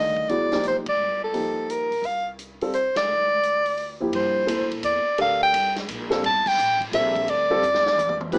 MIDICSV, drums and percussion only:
0, 0, Header, 1, 2, 480
1, 0, Start_track
1, 0, Tempo, 349243
1, 1355, Time_signature, 3, 2, 24, 8
1, 11523, End_track
2, 0, Start_track
2, 0, Title_t, "Drums"
2, 228, Note_on_c, 9, 36, 53
2, 365, Note_off_c, 9, 36, 0
2, 402, Note_on_c, 9, 42, 46
2, 539, Note_off_c, 9, 42, 0
2, 709, Note_on_c, 9, 38, 48
2, 711, Note_on_c, 9, 46, 33
2, 846, Note_off_c, 9, 38, 0
2, 849, Note_off_c, 9, 46, 0
2, 871, Note_on_c, 9, 42, 48
2, 1008, Note_off_c, 9, 42, 0
2, 1183, Note_on_c, 9, 51, 70
2, 1187, Note_on_c, 9, 36, 71
2, 1321, Note_off_c, 9, 51, 0
2, 1324, Note_off_c, 9, 36, 0
2, 1839, Note_on_c, 9, 46, 39
2, 1977, Note_off_c, 9, 46, 0
2, 2331, Note_on_c, 9, 42, 48
2, 2468, Note_off_c, 9, 42, 0
2, 2636, Note_on_c, 9, 46, 33
2, 2774, Note_off_c, 9, 46, 0
2, 2799, Note_on_c, 9, 46, 36
2, 2937, Note_off_c, 9, 46, 0
2, 3280, Note_on_c, 9, 42, 49
2, 3417, Note_off_c, 9, 42, 0
2, 3589, Note_on_c, 9, 46, 34
2, 3727, Note_off_c, 9, 46, 0
2, 3758, Note_on_c, 9, 42, 46
2, 3895, Note_off_c, 9, 42, 0
2, 4068, Note_on_c, 9, 38, 70
2, 4071, Note_on_c, 9, 51, 65
2, 4205, Note_off_c, 9, 38, 0
2, 4208, Note_off_c, 9, 51, 0
2, 4717, Note_on_c, 9, 42, 48
2, 4855, Note_off_c, 9, 42, 0
2, 5025, Note_on_c, 9, 46, 35
2, 5163, Note_off_c, 9, 46, 0
2, 5186, Note_on_c, 9, 46, 37
2, 5324, Note_off_c, 9, 46, 0
2, 5674, Note_on_c, 9, 51, 61
2, 5811, Note_off_c, 9, 51, 0
2, 6160, Note_on_c, 9, 44, 57
2, 6160, Note_on_c, 9, 51, 72
2, 6298, Note_off_c, 9, 44, 0
2, 6298, Note_off_c, 9, 51, 0
2, 6479, Note_on_c, 9, 51, 45
2, 6617, Note_off_c, 9, 51, 0
2, 6637, Note_on_c, 9, 44, 53
2, 6637, Note_on_c, 9, 51, 62
2, 6774, Note_off_c, 9, 44, 0
2, 6774, Note_off_c, 9, 51, 0
2, 7119, Note_on_c, 9, 51, 57
2, 7257, Note_off_c, 9, 51, 0
2, 7610, Note_on_c, 9, 44, 51
2, 7610, Note_on_c, 9, 51, 75
2, 7747, Note_off_c, 9, 44, 0
2, 7747, Note_off_c, 9, 51, 0
2, 7918, Note_on_c, 9, 38, 50
2, 7921, Note_on_c, 9, 51, 44
2, 8056, Note_off_c, 9, 38, 0
2, 8059, Note_off_c, 9, 51, 0
2, 8088, Note_on_c, 9, 44, 51
2, 8088, Note_on_c, 9, 51, 70
2, 8225, Note_off_c, 9, 44, 0
2, 8225, Note_off_c, 9, 51, 0
2, 8400, Note_on_c, 9, 38, 58
2, 8403, Note_on_c, 9, 51, 48
2, 8538, Note_off_c, 9, 38, 0
2, 8541, Note_off_c, 9, 51, 0
2, 8576, Note_on_c, 9, 51, 61
2, 8713, Note_off_c, 9, 51, 0
2, 8880, Note_on_c, 9, 36, 88
2, 8886, Note_on_c, 9, 49, 88
2, 9018, Note_off_c, 9, 36, 0
2, 9023, Note_off_c, 9, 49, 0
2, 9050, Note_on_c, 9, 44, 58
2, 9187, Note_off_c, 9, 44, 0
2, 9356, Note_on_c, 9, 36, 58
2, 9365, Note_on_c, 9, 51, 50
2, 9494, Note_off_c, 9, 36, 0
2, 9502, Note_off_c, 9, 51, 0
2, 9525, Note_on_c, 9, 44, 59
2, 9525, Note_on_c, 9, 51, 67
2, 9662, Note_off_c, 9, 44, 0
2, 9662, Note_off_c, 9, 51, 0
2, 9835, Note_on_c, 9, 36, 60
2, 9840, Note_on_c, 9, 51, 47
2, 9972, Note_off_c, 9, 36, 0
2, 9977, Note_off_c, 9, 51, 0
2, 10005, Note_on_c, 9, 51, 59
2, 10143, Note_off_c, 9, 51, 0
2, 10484, Note_on_c, 9, 44, 57
2, 10621, Note_off_c, 9, 44, 0
2, 10642, Note_on_c, 9, 38, 56
2, 10779, Note_off_c, 9, 38, 0
2, 10805, Note_on_c, 9, 38, 71
2, 10943, Note_off_c, 9, 38, 0
2, 10970, Note_on_c, 9, 47, 61
2, 10973, Note_on_c, 9, 44, 55
2, 11107, Note_off_c, 9, 47, 0
2, 11110, Note_off_c, 9, 44, 0
2, 11117, Note_on_c, 9, 47, 70
2, 11254, Note_off_c, 9, 47, 0
2, 11279, Note_on_c, 9, 47, 89
2, 11416, Note_off_c, 9, 47, 0
2, 11437, Note_on_c, 9, 36, 75
2, 11440, Note_on_c, 9, 49, 70
2, 11523, Note_off_c, 9, 36, 0
2, 11523, Note_off_c, 9, 49, 0
2, 11523, End_track
0, 0, End_of_file